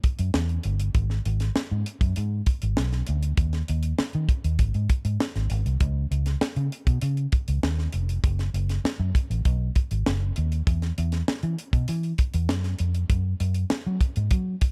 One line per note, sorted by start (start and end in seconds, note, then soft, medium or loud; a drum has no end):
0.04 kick medium
0.04 closed hi-hat medium
0.19 0.31 F#2 medium
0.19 closed hi-hat medium
0.34 0.57 E2 loud
0.34 snare loud
0.49 closed hi-hat soft
0.63 0.88 G1 loud
0.63 closed hi-hat medium
0.80 closed hi-hat medium
0.95 1.18 G#1 loud
0.95 kick loud
0.95 closed hi-hat medium
1.10 snare soft
1.25 1.49 G#1 loud
1.25 closed hi-hat medium
1.40 snare soft
1.40 closed hi-hat medium
1.56 muted fingered electric bass stroke medium
1.56 snare loud
1.71 1.83 G#2 medium
1.86 closed hi-hat medium
2.01 2.13 F#2 loud
2.01 kick loud
2.01 closed hi-hat medium
2.16 2.40 G#2 loud
2.16 closed hi-hat medium
2.46 kick medium
2.46 closed hi-hat medium
2.62 2.74 G#1 medium
2.62 closed hi-hat medium
2.77 3.01 B1 loud
2.77 snare loud
2.92 snare soft
2.92 closed hi-hat soft
3.07 3.31 D2 loud
3.07 closed hi-hat medium
3.23 closed hi-hat medium
3.37 3.61 D#2 loud
3.37 kick loud
3.37 closed hi-hat medium
3.53 snare soft
3.53 closed hi-hat soft
3.68 3.92 D#2 loud
3.68 closed hi-hat medium
3.83 closed hi-hat medium
3.98 muted fingered electric bass stroke soft
3.98 snare medium
4.13 4.26 D#3 medium
4.13 closed hi-hat soft
4.29 kick medium
4.29 closed hi-hat medium
4.44 4.56 D#2 medium
4.44 closed hi-hat medium
4.59 4.71 G#1 medium
4.59 kick medium
4.59 closed hi-hat medium
4.74 4.86 G#2 medium
4.74 closed hi-hat soft
4.90 kick medium
4.90 closed hi-hat medium
5.05 5.16 G#2 medium
5.05 closed hi-hat medium
5.20 snare loud
5.36 5.47 G#1 medium
5.36 snare soft
5.36 closed hi-hat soft
5.50 5.62 G#1 medium
5.50 closed hi-hat medium
5.66 5.77 C2 medium
5.66 closed hi-hat soft
5.80 6.04 C#2 loud
5.80 kick loud
5.80 closed hi-hat loud
6.11 6.34 C#2 medium
6.11 closed hi-hat medium
6.26 snare soft
6.26 closed hi-hat medium
6.41 muted fingered electric bass stroke soft
6.41 snare loud
6.56 6.68 C#3 loud
6.56 closed hi-hat soft
6.72 closed hi-hat medium
6.87 6.98 B2 medium
6.87 kick loud
6.87 closed hi-hat medium
7.01 7.26 C#3 medium
7.01 closed hi-hat medium
7.17 closed hi-hat soft
7.32 kick loud
7.32 closed hi-hat medium
7.48 7.60 C#2 medium
7.48 closed hi-hat medium
7.63 7.86 D#2 medium
7.63 snare loud
7.78 snare soft
7.92 8.17 F1 loud
7.92 closed hi-hat medium
8.09 closed hi-hat medium
8.24 8.47 F#1 loud
8.24 kick loud
8.24 closed hi-hat medium
8.39 snare soft
8.39 closed hi-hat soft
8.54 8.77 F#1 loud
8.54 closed hi-hat medium
8.69 snare soft
8.69 closed hi-hat medium
8.84 muted fingered electric bass stroke soft
8.84 snare loud
8.99 9.11 F#2 loud
9.15 kick loud
9.15 closed hi-hat medium
9.30 9.42 A1 medium
9.30 closed hi-hat medium
9.45 9.68 B1 loud
9.45 kick medium
9.45 closed hi-hat medium
9.76 kick loud
9.76 closed hi-hat medium
9.91 10.03 G#1 medium
9.91 closed hi-hat medium
10.06 10.30 F#1 medium
10.06 snare loud
10.36 10.60 D#2 medium
10.36 closed hi-hat medium
10.52 closed hi-hat medium
10.67 10.90 E2 loud
10.67 kick loud
10.67 closed hi-hat medium
10.82 snare soft
10.82 closed hi-hat soft
10.98 11.21 E2 loud
10.98 closed hi-hat medium
11.12 snare soft
11.12 closed hi-hat medium
11.28 muted fingered electric bass stroke soft
11.28 snare loud
11.43 11.55 E3 loud
11.43 closed hi-hat soft
11.59 closed hi-hat medium
11.73 11.85 B2 loud
11.73 kick loud
11.73 closed hi-hat medium
11.88 12.12 E3 loud
11.88 closed hi-hat medium
12.03 closed hi-hat soft
12.18 kick medium
12.18 closed hi-hat medium
12.34 12.50 E2 medium
12.34 closed hi-hat medium
12.49 12.73 F#2 loud
12.49 snare loud
12.64 snare soft
12.64 closed hi-hat soft
12.79 13.03 F2 medium
12.79 closed hi-hat medium
12.95 closed hi-hat medium
13.10 13.33 F#2 loud
13.10 kick loud
13.10 closed hi-hat medium
13.40 13.63 F#2 loud
13.40 closed hi-hat medium
13.54 closed hi-hat medium
13.70 muted fingered electric bass stroke soft
13.70 snare loud
13.87 13.98 F#3 medium
14.01 kick medium
14.01 closed hi-hat medium
14.16 14.28 G#2 loud
14.16 closed hi-hat soft
14.31 14.54 F#3 medium
14.31 kick medium
14.31 closed hi-hat medium
14.61 kick medium
14.61 closed hi-hat medium